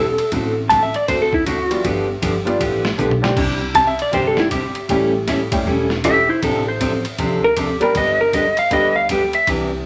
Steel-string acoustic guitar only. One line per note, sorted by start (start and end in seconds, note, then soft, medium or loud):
0.32 0.54 D3 medium
0.32 0.54 A3 medium
0.32 0.54 C4 medium
0.32 0.54 F#4 medium
0.32 0.54 A4 medium
0.71 0.82 D3 medium
0.71 0.82 A3 medium
0.71 0.82 C4 medium
0.71 0.82 F#4 medium
0.71 0.82 A4 medium
1.09 1.30 D3 medium
1.09 1.30 A3 medium
1.09 1.30 C4 medium
1.09 1.30 F#4 medium
1.09 1.31 A4 medium
1.46 1.58 D3 medium
1.46 1.58 A3 medium
1.46 1.58 C4 medium
1.46 1.58 F#4 medium
1.46 1.58 A4 medium
1.84 2.06 D3 medium
1.84 2.06 F3 medium
1.84 2.06 B3 medium
1.84 2.06 D4 medium
1.84 2.06 G4 medium
2.22 2.34 D3 medium
2.22 2.34 F3 medium
2.22 2.34 B3 medium
2.22 2.34 D4 medium
2.22 2.34 G4 medium
2.60 2.82 D3 medium
2.60 2.82 F3 medium
2.60 2.82 B3 medium
2.60 2.82 D4 medium
2.60 2.82 G4 medium
2.98 3.10 D3 medium
2.98 3.10 F3 medium
2.98 3.10 B3 medium
2.98 3.10 D4 medium
2.98 3.10 G4 medium
3.37 3.59 C3 medium
3.37 3.59 G3 medium
3.37 3.59 C4 medium
3.37 3.59 D4 medium
3.37 3.59 G4 medium
3.74 3.86 C3 medium
3.74 3.86 G3 medium
3.74 3.86 C4 medium
3.74 3.86 D4 medium
3.74 3.87 G4 medium
4.13 4.35 C3 medium
4.13 4.35 G3 medium
4.13 4.35 C4 medium
4.13 4.35 D4 medium
4.13 4.35 G4 medium
4.51 4.63 C3 medium
4.51 4.63 G3 medium
4.51 4.63 C4 medium
4.51 4.63 D4 medium
4.51 4.63 G4 medium
4.90 5.11 E3 medium
4.90 5.12 G3 medium
4.90 5.12 C#4 medium
4.90 5.12 E4 medium
4.90 5.12 A4 medium
5.28 5.39 E3 medium
5.28 5.39 G3 medium
5.28 5.39 C#4 medium
5.28 5.40 E4 medium
5.28 5.40 A4 medium
5.66 5.88 E3 medium
5.66 5.88 G3 medium
5.66 5.88 C#4 medium
5.66 5.88 E4 medium
5.66 5.88 A4 medium
6.05 6.16 E3 medium
6.05 6.16 G3 medium
6.05 6.16 C#4 medium
6.05 6.16 E4 medium
6.05 6.16 A4 medium
6.43 6.64 C3 medium
6.43 6.64 F3 medium
6.43 6.64 C4 medium
6.43 6.64 D4 medium
6.43 6.64 A4 medium
6.80 6.92 C3 medium
6.80 6.92 F3 medium
6.80 6.92 C4 medium
6.80 6.92 D4 medium
6.80 6.92 A4 medium
7.19 7.40 C3 medium
7.19 7.41 F3 medium
7.19 7.41 C4 medium
7.19 7.41 D4 medium
7.19 7.41 A4 medium
7.57 7.69 C3 medium
7.57 7.68 F3 medium
7.57 7.69 C4 medium
7.57 7.69 D4 medium
7.57 7.69 A4 medium
7.96 8.17 D3 medium
7.96 8.17 G3 medium
7.96 8.18 B3 medium
7.96 8.17 D4 medium
7.96 8.18 G4 medium
8.34 8.45 D3 medium
8.34 8.45 G3 medium
8.34 8.45 B3 medium
8.34 8.45 D4 medium
8.34 8.45 G4 medium
8.72 8.93 D3 medium
8.72 8.93 G3 medium
8.72 8.93 B3 medium
8.72 8.94 D4 medium
8.72 8.94 G4 medium
9.11 9.21 D3 medium
9.11 9.22 G3 medium
9.11 9.22 B3 medium
9.11 9.22 D4 medium
9.11 9.22 G4 medium
9.48 9.70 C3 medium
9.48 9.70 E3 medium
9.48 9.70 D4 medium
9.48 9.70 G4 medium